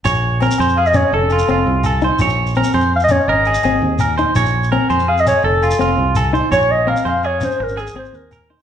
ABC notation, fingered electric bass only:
X:1
M:12/8
L:1/8
Q:3/8=111
K:Bbm
V:1 name="Fingered electric bass" clef=bass
B,,,3 F,,3 F,,,2 F,,, C,,3 | B,,,3 F,,3 A,,,2 A,,, E,,3 | B,,,3 F,,3 F,,,2 F,,, C,,3 | B,,,3 F,,3 A,,,2 A,,, E,,3 |]